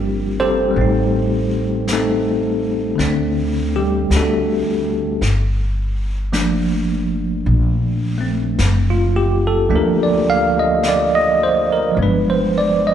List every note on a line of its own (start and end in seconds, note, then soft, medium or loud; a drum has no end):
0.00 0.72 G1 medium
0.00 0.76 F3 soft
0.00 0.71 G3 soft
0.00 0.76 A#3 soft
0.00 0.40 C4 soft
0.00 0.38 D4 soft
0.00 0.38 G4 soft
0.40 0.77 C4 medium
0.40 1.85 G4 medium
0.40 1.85 A4 medium
0.40 1.85 C5 medium
0.71 2.97 G3 soft
0.71 1.92 A3 soft
0.76 2.95 A1 medium
0.76 1.92 C4 soft
0.76 brush sweep soft
0.81 1.92 D#4 soft
1.88 brush sweep soft
1.88 snare soft
1.88 hi-hat pedal soft
1.93 2.97 A3 soft
1.93 2.98 C4 medium
1.93 2.98 D#4 soft
1.93 3.71 A4 medium
2.96 4.07 D2 medium
2.96 5.20 D3 medium
2.96 4.15 A3 soft
2.96 5.22 C4 soft
2.96 brush sweep soft
2.96 snare soft
3.01 4.16 D4 medium
3.76 4.12 G3 soft
3.76 4.11 G4 medium
4.10 5.18 D2 medium
4.10 brush sweep soft
4.10 snare soft
4.10 hi-hat pedal soft
4.16 4.58 A3 soft
4.16 4.59 D4 soft
4.16 4.58 F#4 soft
4.16 4.58 A4 medium
5.21 7.41 G1 medium
5.21 brush sweep soft
5.21 snare soft
6.33 9.68 F3 soft
6.33 8.17 A3 soft
6.33 9.70 A#3 soft
6.33 9.69 D4 medium
6.33 brush sweep soft
6.33 snare soft
6.33 hi-hat pedal medium
7.46 8.54 A#1 medium
7.46 brush sweep soft
8.18 9.69 A3 soft
8.18 9.71 C4 soft
8.59 9.67 F#1 medium
8.59 brush sweep soft
8.59 snare soft
8.59 hi-hat pedal soft
8.90 9.28 F4 medium
9.16 9.43 G4 medium
9.47 9.68 A4 medium
9.69 11.92 D2 medium
9.69 11.90 F3 soft
9.69 11.96 A3 soft
9.69 11.97 A#3 soft
9.69 11.97 D4 medium
9.69 brush sweep soft
9.76 10.09 A#4 medium
10.03 10.41 D5 medium
10.30 10.56 F5 medium
10.59 10.80 D#5 medium
10.83 brush sweep soft
10.83 snare soft
10.83 hi-hat pedal soft
10.88 11.22 D5 medium
11.15 11.54 D#5 medium
11.43 11.69 C5 medium
11.73 11.94 A#4 medium
11.92 12.94 F3 soft
11.92 12.94 G#3 soft
11.97 12.94 G1 medium
11.97 12.94 B3 soft
11.97 brush sweep soft
12.02 12.94 D4 soft
12.02 12.36 B4 medium
12.30 12.68 C5 medium
12.58 12.83 D5 medium
12.87 12.94 D#5 medium